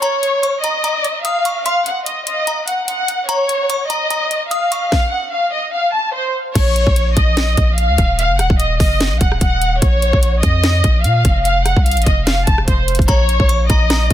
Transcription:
0.02 C#5 A#5, closed hi-hat
0.23 closed hi-hat
0.43 C#6, closed hi-hat
0.64 D#5 A#5, closed hi-hat
0.84 A#5, closed hi-hat
1.04 closed hi-hat
1.25 F5 D#6, closed hi-hat
1.45 C#6, closed hi-hat
1.66 F5 C6, closed hi-hat
1.86 F#5, closed hi-hat
2.06 D#5, closed hi-hat
2.27 D#5, closed hi-hat
2.47 A#5, closed hi-hat
2.68 F#5, closed hi-hat
2.88 F#5, closed hi-hat
3.08 closed hi-hat
3.29 C#5 A#5, closed hi-hat
3.49 closed hi-hat
3.70 C#6, closed hi-hat
3.90 D#5 A#5, closed hi-hat
4.10 A#5, closed hi-hat
4.31 closed hi-hat
4.51 F5 D#6, closed hi-hat
4.72 C#6, closed hi-hat
4.92 F5, kick, snare
5.12 F#5
5.33 F5
5.53 D#5
5.74 F5
5.94 A5
6.14 C5
6.55 A#1 C#5, kick, closed hi-hat, crash
6.76 closed hi-hat
6.87 A#1, kick
6.96 closed hi-hat
7.16 A#1 D#5, kick, closed hi-hat
7.37 snare, closed hi-hat
7.57 A#1, kick, closed hi-hat
7.78 F5, closed hi-hat
7.89 C#2
7.98 D#1, kick, closed hi-hat
8.19 F5, closed hi-hat
8.30 F#1
8.39 D#1 F#5, cross-stick, closed hi-hat
8.50 D#1, kick
8.59 D#5, closed hi-hat
8.80 F#1 D#5, kick, open hi-hat
9.01 snare, closed hi-hat
9.11 A#1
9.21 D#1 F#5, kick, closed hi-hat
9.32 cross-stick
9.41 D#1 F#5, kick, closed hi-hat
9.62 closed hi-hat
9.82 A#1 C#5, kick, closed hi-hat
10.02 closed hi-hat
10.13 A#1, kick
10.23 closed hi-hat
10.43 F2 D#5, kick, closed hi-hat
10.64 snare, closed hi-hat
10.84 A#1, kick, closed hi-hat
11.04 A#2 F5, closed hi-hat
11.25 F1, kick, closed hi-hat
11.45 F5, closed hi-hat
11.66 F#5, cross-stick, closed hi-hat
11.77 C2, kick
11.86 F5, closed hi-hat
11.91 closed hi-hat
11.97 A1, closed hi-hat
12.02 closed hi-hat
12.06 F1 D#5, kick, closed hi-hat
12.27 F5, snare, closed hi-hat
12.47 F1 A5, kick, closed hi-hat
12.58 cross-stick
12.68 F1 C5, kick, closed hi-hat
12.88 closed hi-hat
12.95 closed hi-hat
12.99 F1, kick, closed hi-hat
13.08 A#1 C#5 A#5, kick, closed hi-hat
13.29 closed hi-hat
13.40 A#1, kick
13.49 C#6, closed hi-hat
13.70 A#1 D#5 A#5, kick, closed hi-hat
13.90 A#5, snare, closed hi-hat

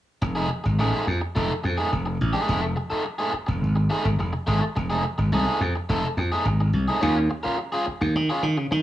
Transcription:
0.22 F1, muted overdriven electric guitar stroke
0.35 A3 D#4 G#4
0.50 muted overdriven electric guitar stroke
0.64 G#1, muted overdriven electric guitar stroke
0.79 A1 A3 D#4 G#4
1.07 F2, muted overdriven electric guitar stroke
1.21 muted overdriven electric guitar stroke
1.35 F1 A3 D#4 A4
1.64 F2, muted overdriven electric guitar stroke
1.78 A3 D#4 G#4
1.92 F1, muted overdriven electric guitar stroke
2.06 muted overdriven electric guitar stroke
2.21 A1
2.33 A3 D#4 G#4
2.47 F1 A3 D#4 G#4
2.62 muted overdriven electric guitar stroke
2.76 muted overdriven electric guitar stroke
2.90 A3 D#4 A4, muted slap bass stroke
3.05 muted overdriven electric guitar stroke
3.19 A3 D#4 G#4
3.33 muted overdriven electric guitar stroke, muted slap bass stroke
3.47 F1, muted overdriven electric guitar stroke
3.63 G#1
3.76 muted overdriven electric guitar stroke
3.90 A3 D#4 G#4
4.05 G#1, muted overdriven electric guitar stroke
4.19 F1, muted overdriven electric guitar stroke
4.33 muted overdriven electric guitar stroke
4.47 G#1 A3 D#4 G#4
4.62 muted overdriven electric guitar stroke
4.76 F1, muted overdriven electric guitar stroke
4.90 A3 D#4 G#4
5.05 muted overdriven electric guitar stroke
5.18 G#1, muted overdriven electric guitar stroke
5.32 C2 A3 D#4 G#4
5.61 F2, muted overdriven electric guitar stroke
5.76 muted overdriven electric guitar stroke
5.89 F1 A3 D#4 A4
6.17 F2, muted overdriven electric guitar stroke
6.32 A3 D#4 G#4
6.45 G#1, muted overdriven electric guitar stroke
6.61 muted overdriven electric guitar stroke
6.73 C2
6.88 A3 D#4 G#4
7.01 D#2 C#4 F4 G#4
7.16 muted overdriven electric guitar stroke
7.30 muted overdriven electric guitar stroke
7.43 C#4 F4 A#4, muted slap bass stroke
7.58 muted overdriven electric guitar stroke
7.72 C#4 F4 G#4
7.86 muted overdriven electric guitar stroke, muted slap bass stroke
8.01 D#2, muted overdriven electric guitar stroke
8.15 D#3, muted overdriven electric guitar stroke
8.29 C#4 F4 G#4
8.43 D#3, muted overdriven electric guitar stroke
8.57 C#3, muted overdriven electric guitar stroke
8.71 D#3, muted overdriven electric guitar stroke

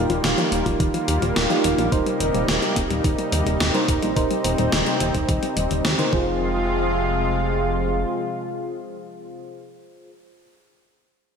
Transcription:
Already playing: D#3 G3 A#3 D#4 F4 G4
0.10 D#1 F3, closed hi-hat
0.24 D#1 D#3, snare, closed hi-hat
0.38 F3, closed hi-hat
0.52 D#1 G3, closed hi-hat
0.66 D#1 F3, kick, closed hi-hat
0.80 D#1 D#3, kick, closed hi-hat
0.94 F3, closed hi-hat
1.08 D#2 G3, closed hi-hat
1.22 D#1 F3, closed hi-hat
1.36 D#1 D#3, snare, closed hi-hat
1.50 F3 D#4 F4 G4, closed hi-hat
1.64 D#1 G3, closed hi-hat
1.78 A#1 F3, closed hi-hat
1.92 D#1 C3 D#3 D#4 A#4 C5, kick, closed hi-hat
2.06 G3, closed hi-hat
2.20 D#1 A#3, closed hi-hat
2.34 D#1 G3, closed hi-hat
2.48 D#1 D#3, snare, closed hi-hat
2.62 G3, closed hi-hat
2.76 D#1 A#3, kick, closed hi-hat
2.90 D#1 G3, closed hi-hat
3.04 D#1 D#3, kick, closed hi-hat
3.18 G3, closed hi-hat
3.32 D#2 A#3, closed hi-hat
3.46 D#1 G3, closed hi-hat
3.60 D#1 D#3, snare, closed hi-hat
3.74 G3 D#4 A#4 C5, closed hi-hat
3.88 D#1 A#3, kick, closed hi-hat
4.02 A#1 G3, closed hi-hat
4.16 D#1 D#3 C4 D#4 A#4 C5, kick, closed hi-hat
4.31 G3, closed hi-hat
4.44 D#1 A#3, closed hi-hat
4.58 D#1 G3, closed hi-hat
4.72 D#1 D#3, snare, closed hi-hat
4.86 G3, closed hi-hat
5.00 D#1 A#3, closed hi-hat
5.14 D#1 G3, kick, closed hi-hat
5.28 D#1 D#3, kick, closed hi-hat
5.43 G3, closed hi-hat
5.57 D#1 D#3, closed hi-hat
5.71 D#1 D#3, closed hi-hat
5.85 D#2 G3, snare, closed hi-hat
5.99 D#3 D#4 A#4 C5, closed hi-hat
6.13 F1 C3 F3 G#3 F4 G#4 C5, kick

